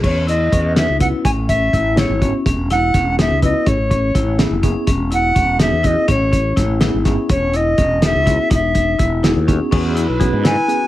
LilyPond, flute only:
\new Staff \with { instrumentName = "Flute" } { \time 5/8 \key e \major \tempo 4 = 124 cis''8 dis''4 e''8 fis''8 | gis''8 e''4 cis''8. r16 | r8 fis''4 e''8 dis''8 | cis''4. r4 |
r8 fis''4 e''8 dis''8 | cis''4. r4 | cis''8 dis''4 e''4 | e''4. r4 |
r4. gis''4 | }